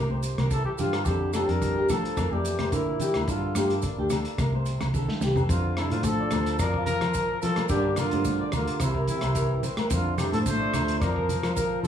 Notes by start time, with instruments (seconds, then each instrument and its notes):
Already playing: fingered electric bass C2, steel-string acoustic guitar C3, trombone D3, trumpet G4, clean electric guitar A#4
0.10 clean electric guitar C5, high conga
0.23 steel-string acoustic guitar C4, closed hi-hat, maracas
0.38 fingered electric bass C2, clean electric guitar A#4, cross-stick, closed hi-hat, high conga, low conga, low agogo
0.50 trombone E3, steel-string acoustic guitar E4, trumpet A4, clean electric guitar A4, kick, closed hi-hat, maracas
0.65 trombone E3, trumpet G4
0.78 fingered electric bass G2, trombone D3, steel-string acoustic guitar E3, trumpet F4, clean electric guitar G4, closed hi-hat, low conga, maracas
0.93 clean electric guitar A4, cross-stick, closed hi-hat, low agogo
1.05 steel-string acoustic guitar F2, fingered electric bass F2, trombone D3, trumpet G4, clean electric guitar A4, kick, closed hi-hat, maracas
1.33 trombone F3, steel-string acoustic guitar D4, clean electric guitar G4, trumpet A4, cross-stick, closed hi-hat, high conga, low agogo, maracas
1.47 fingered electric bass F2, trombone G3, clean electric guitar A4, trumpet A#4, closed hi-hat
1.62 steel-string acoustic guitar F4, kick, closed hi-hat, maracas
1.78 clean electric guitar G4
1.89 fingered electric bass F3, trombone F3, steel-string acoustic guitar A3, trumpet A4, clean electric guitar A4, kick, cross-stick, closed hi-hat, high conga, low conga, low agogo, maracas
2.05 closed hi-hat
2.16 steel-string acoustic guitar F2, fingered electric bass F2, clean electric guitar A#4, kick, cross-stick, closed hi-hat, high conga, low agogo, maracas
2.32 fingered electric bass F2, trombone E3, trumpet G4, clean electric guitar D5, high conga
2.45 steel-string acoustic guitar A#3, closed hi-hat, maracas
2.59 clean electric guitar C5, cross-stick, closed hi-hat, high conga, low conga, low agogo
2.72 trombone A#2, fingered electric bass D3, trumpet E4, clean electric guitar A#4, kick, closed hi-hat, maracas
3.00 steel-string acoustic guitar F2, clean electric guitar G4, closed hi-hat, low conga, maracas
3.14 fingered electric bass D2, cross-stick, closed hi-hat, low agogo
3.27 fingered electric bass G2, steel-string acoustic guitar G2, trombone D3, trumpet F4, clean electric guitar A4, kick, closed hi-hat, maracas
3.55 fingered electric bass G2, steel-string acoustic guitar A#3, clean electric guitar G4, cross-stick, closed hi-hat, high conga, low agogo, maracas
3.70 clean electric guitar A4, closed hi-hat, maracas
3.82 steel-string acoustic guitar D4, kick, closed hi-hat, maracas
3.98 fingered electric bass D2, clean electric guitar G4
4.10 clean electric guitar A4, muted steel-string acoustic guitar stroke, cross-stick, closed hi-hat, high conga, low conga, low agogo, maracas
4.25 closed hi-hat, maracas
4.38 fingered electric bass C2, steel-string acoustic guitar C3, clean electric guitar A#4, kick, cross-stick, closed hi-hat, high conga, low agogo, maracas
4.53 clean electric guitar C5, high conga
4.66 steel-string acoustic guitar C4, closed hi-hat, maracas
4.81 fingered electric bass C2, muted clean electric guitar stroke, cross-stick, closed hi-hat, high conga, low conga, low agogo, maracas
4.94 steel-string acoustic guitar D3, clean electric guitar A4, kick, high tom, maracas
5.07 snare, high conga
5.21 fingered electric bass C2, clean electric guitar G4, snare, low conga, maracas
5.25 steel-string acoustic guitar E3
5.36 clean electric guitar A4, floor tom, low conga, low agogo, maracas
5.49 fingered electric bass F2, steel-string acoustic guitar F2, trombone D3, trumpet F4, clean electric guitar C5, kick, closed hi-hat, maracas
5.77 trombone C3, steel-string acoustic guitar D4, trumpet E4, clean electric guitar A4, cross-stick, closed hi-hat, low agogo
5.90 fingered electric bass A2, trombone D3, trumpet F4, clean electric guitar C5, closed hi-hat, high conga
6.03 steel-string acoustic guitar F3, trumpet A4, kick, closed hi-hat, high conga, maracas
6.07 trombone F3
6.20 clean electric guitar D5
6.31 fingered electric bass D2, clean electric guitar C5, muted steel-string acoustic guitar stroke, cross-stick, closed hi-hat, high conga, low conga, low agogo, maracas
6.46 closed hi-hat, maracas
6.59 fingered electric bass F2, steel-string acoustic guitar F2, trombone F3, trumpet A#4, clean electric guitar D5, kick, cross-stick, closed hi-hat, low agogo, maracas
6.74 clean electric guitar F4, kick
6.86 trombone F3, trumpet A#4, closed hi-hat, low conga, maracas
6.90 steel-string acoustic guitar F4
7.01 fingered electric bass F3, clean electric guitar C5, cross-stick, closed hi-hat, low agogo, maracas
7.14 clean electric guitar A#4, kick, closed hi-hat, maracas
7.41 steel-string acoustic guitar F2, trombone F3, fingered electric bass F3, trumpet A4, clean electric guitar C5, closed hi-hat, low conga, maracas
7.56 clean electric guitar A#4, cross-stick, closed hi-hat, high conga, low agogo
7.69 fingered electric bass G2, steel-string acoustic guitar G2 G3, trombone D3, trumpet G4, clean electric guitar D5, kick, closed hi-hat, maracas
7.73 steel-string acoustic guitar A#3 D4, muted steel-string acoustic guitar stroke
7.96 trombone D3, steel-string acoustic guitar D4, trumpet F4, clean electric guitar A#4, cross-stick, closed hi-hat, low conga, low agogo, maracas
8.11 fingered electric bass G2, clean electric guitar C5, closed hi-hat, high conga
8.25 steel-string acoustic guitar G3, kick, closed hi-hat, high conga, maracas
8.41 clean electric guitar D5
8.52 fingered electric bass D2, trombone D3, steel-string acoustic guitar A#3, trumpet F4, clean electric guitar A#4, cross-stick, closed hi-hat, high conga, low conga, low agogo, maracas
8.67 closed hi-hat, maracas
8.80 fingered electric bass C2, trombone C3, trumpet E4, clean electric guitar C5, muted steel-string acoustic guitar stroke, kick, cross-stick, closed hi-hat, low agogo, maracas
8.95 clean electric guitar A#4, kick
9.07 trombone C3, steel-string acoustic guitar C4, trumpet E4, closed hi-hat, low conga, maracas
9.21 fingered electric bass C2, clean electric guitar C5, cross-stick, closed hi-hat, low agogo, maracas
9.35 steel-string acoustic guitar E3, clean electric guitar A#4, kick, closed hi-hat, maracas
9.63 fingered electric bass A1, steel-string acoustic guitar C4, clean electric guitar C5, closed hi-hat, low conga, maracas
9.77 clean electric guitar A#4, cross-stick, closed hi-hat, high conga, low agogo
9.90 fingered electric bass F2, steel-string acoustic guitar F2, trumpet F4, clean electric guitar C5, kick, closed hi-hat, maracas
9.94 trombone D3
10.18 trombone E3, steel-string acoustic guitar D4, trumpet G4, clean electric guitar A4, cross-stick, closed hi-hat, low conga, low agogo, maracas
10.32 fingered electric bass A2, trombone F3, trumpet A4, clean electric guitar C5, closed hi-hat, high conga
10.46 steel-string acoustic guitar F3, trombone A3, trumpet C5, kick, closed hi-hat, high conga, maracas
10.60 clean electric guitar D5
10.74 fingered electric bass D2, steel-string acoustic guitar A3, clean electric guitar C5, cross-stick, closed hi-hat, high conga, low conga, low agogo, maracas
10.88 closed hi-hat, maracas
10.99 fingered electric bass F2, steel-string acoustic guitar F2, trombone F3, trumpet A#4, clean electric guitar D5, kick, cross-stick, closed hi-hat, maracas
11.03 low agogo
11.16 clean electric guitar A#4, kick
11.29 steel-string acoustic guitar F4, closed hi-hat, low conga, maracas
11.43 fingered electric bass F3, clean electric guitar C5, cross-stick, closed hi-hat, low agogo, maracas
11.54 steel-string acoustic guitar F3, trombone F3, trumpet A#4, clean electric guitar A#4, kick, closed hi-hat, maracas
11.83 fingered electric bass F3, trumpet A4, clean electric guitar C5